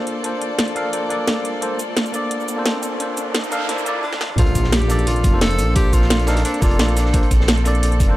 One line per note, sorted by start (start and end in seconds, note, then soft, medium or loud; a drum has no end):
0.00 0.21 A#3 medium
0.00 3.99 A#3 medium
0.00 0.22 D4 medium
0.00 3.99 F4 medium
0.00 0.23 A4 medium
0.00 3.99 A4 medium
0.00 0.23 C5 medium
0.00 3.99 C5 medium
0.00 3.99 D5 medium
0.00 riser medium
0.07 closed hi-hat medium
0.23 0.73 A#3 medium
0.23 0.74 D4 medium
0.23 0.74 A4 medium
0.23 0.75 C5 medium
0.23 closed hi-hat loud
0.42 closed hi-hat medium
0.59 snare loud
0.59 closed hi-hat medium
0.68 closed hi-hat soft
0.75 0.91 A#3 medium
0.75 0.91 D4 medium
0.75 0.91 A4 medium
0.75 0.92 F5 loud
0.75 closed hi-hat medium
0.92 1.08 A#3 medium
0.92 1.08 D4 medium
0.92 1.09 A4 medium
0.92 1.09 C5 medium
0.92 closed hi-hat loud
1.09 1.59 A#3 medium
1.09 1.60 D4 medium
1.09 1.60 A4 medium
1.09 1.61 D5 medium
1.09 closed hi-hat medium
1.28 snare loud
1.28 closed hi-hat medium
1.45 closed hi-hat medium
1.61 1.78 A#3 medium
1.61 1.78 D4 medium
1.61 1.78 A4 medium
1.61 1.79 C5 loud
1.61 closed hi-hat medium
1.79 closed hi-hat medium
1.79 cabasa medium
1.97 snare loud
1.97 closed hi-hat medium
2.06 closed hi-hat soft
2.06 cabasa soft
2.12 2.54 A#3 medium
2.12 2.55 D4 medium
2.12 2.56 A4 medium
2.12 2.56 D5 loud
2.12 closed hi-hat medium
2.12 cabasa medium
2.31 closed hi-hat loud
2.40 cabasa soft
2.48 closed hi-hat medium
2.48 cabasa medium
2.56 2.97 A#3 medium
2.56 2.98 D4 medium
2.56 2.98 A4 medium
2.56 2.99 C5 loud
2.66 snare loud
2.66 closed hi-hat loud
2.83 closed hi-hat medium
2.83 cabasa medium
2.98 3.49 A#3 medium
2.98 3.50 D4 medium
2.98 3.50 A4 medium
2.98 3.51 C5 medium
2.98 closed hi-hat medium
2.98 noise sweep medium
3.17 closed hi-hat medium
3.17 cabasa medium
3.35 snare loud
3.35 closed hi-hat medium
3.44 closed hi-hat soft
3.44 cabasa soft
3.51 3.67 A#3 loud
3.51 3.67 D4 medium
3.51 3.67 A4 medium
3.51 3.67 F5 loud
3.51 closed hi-hat medium
3.51 cabasa medium
3.68 3.84 A#3 medium
3.68 3.84 D4 medium
3.68 3.85 A4 medium
3.68 3.85 C5 medium
3.68 snare soft
3.68 closed hi-hat medium
3.78 cabasa soft
3.85 4.03 A#3 medium
3.85 4.03 D4 medium
3.85 4.04 A4 medium
3.85 4.04 D5 loud
3.85 closed hi-hat medium
3.85 cabasa medium
4.04 4.36 D4 medium
4.13 snare medium
4.21 snare medium
4.30 mid tom medium
4.37 4.46 A#1 loud
4.37 4.54 A#3 medium
4.37 8.17 C4 medium
4.37 4.54 D4 medium
4.37 4.74 F4 loud
4.37 8.17 A4 medium
4.37 4.54 A4 medium
4.37 4.55 C5 loud
4.37 8.17 D5 medium
4.37 kick loud
4.37 closed hi-hat loud
4.37 impact medium
4.47 closed hi-hat soft
4.55 5.06 A#1 medium
4.55 kick medium
4.55 closed hi-hat medium
4.55 cabasa medium
4.64 snare medium
4.72 5.09 G4 loud
4.72 snare loud
4.72 closed hi-hat medium
4.82 closed hi-hat soft
4.88 5.30 A#3 loud
4.88 5.31 D4 medium
4.88 5.32 A4 medium
4.88 5.32 D5 loud
4.88 closed hi-hat medium
4.88 cabasa medium
4.99 closed hi-hat soft
5.07 5.26 A#1 medium
5.07 5.41 F4 loud
5.07 closed hi-hat medium
5.16 closed hi-hat soft
5.24 5.60 F1 medium
5.24 kick loud
5.24 closed hi-hat medium
5.24 cabasa medium
5.32 5.73 A#3 medium
5.32 5.74 D4 medium
5.32 5.74 A4 medium
5.32 5.75 C5 loud
5.41 5.74 A4 loud
5.41 snare loud
5.41 closed hi-hat loud
5.41 closed hi-hat medium
5.51 closed hi-hat soft
5.59 5.92 A#1 loud
5.59 closed hi-hat medium
5.59 cabasa medium
5.74 6.25 A#3 medium
5.74 6.25 D4 medium
5.74 5.95 G4 loud
5.74 6.26 A4 medium
5.74 6.27 C5 medium
5.74 kick loud
5.74 closed hi-hat loud
5.93 6.44 A#1 medium
5.93 6.29 F4 loud
5.93 kick medium
5.93 closed hi-hat medium
5.93 cabasa medium
6.02 snare soft
6.10 snare loud
6.10 closed hi-hat loud
6.10 closed hi-hat medium
6.20 closed hi-hat soft
6.27 6.43 A#3 loud
6.27 6.43 D4 medium
6.27 6.44 D#4 medium
6.27 6.43 A4 medium
6.27 6.43 F5 loud
6.27 snare loud
6.27 closed hi-hat medium
6.27 cabasa medium
6.35 snare loud
6.35 closed hi-hat soft
6.35 closed hi-hat medium
6.44 6.59 A#3 medium
6.44 6.60 D4 medium
6.44 6.64 D4 medium
6.44 6.60 A4 medium
6.44 6.61 C5 medium
6.44 closed hi-hat medium
6.44 closed hi-hat loud
6.54 closed hi-hat soft
6.61 6.78 F1 loud
6.61 7.11 A#3 medium
6.61 7.12 D4 medium
6.61 6.98 F4 medium
6.61 7.12 A4 medium
6.61 7.13 D5 loud
6.61 kick loud
6.61 closed hi-hat medium
6.61 open hi-hat medium
6.61 cabasa medium
6.71 closed hi-hat soft
6.79 7.13 A#1 medium
6.79 snare loud
6.79 closed hi-hat medium
6.88 closed hi-hat soft
6.97 7.31 D4 medium
6.97 snare soft
6.97 closed hi-hat medium
6.97 cabasa medium
7.06 snare soft
7.13 7.22 A#1 loud
7.13 7.30 A#3 medium
7.13 7.30 D4 medium
7.13 7.30 A4 medium
7.13 7.31 C5 loud
7.13 kick loud
7.13 closed hi-hat medium
7.13 closed hi-hat loud
7.23 closed hi-hat soft
7.31 7.82 A#1 medium
7.31 kick medium
7.31 closed hi-hat medium
7.31 cabasa medium
7.41 snare medium
7.48 snare loud
7.48 closed hi-hat loud
7.48 closed hi-hat medium
7.57 closed hi-hat soft
7.64 8.06 A#3 loud
7.64 8.07 D4 medium
7.64 8.07 A4 medium
7.64 8.08 D5 loud
7.64 closed hi-hat medium
7.64 cabasa medium
7.75 closed hi-hat soft
7.83 8.02 A#1 medium
7.83 closed hi-hat medium
7.83 closed hi-hat loud
7.92 closed hi-hat soft
8.00 8.17 F1 medium
8.00 kick loud
8.00 closed hi-hat medium
8.00 cabasa medium
8.08 8.17 A#3 loud
8.08 8.17 D4 medium
8.08 8.17 A4 medium
8.08 8.17 C5 loud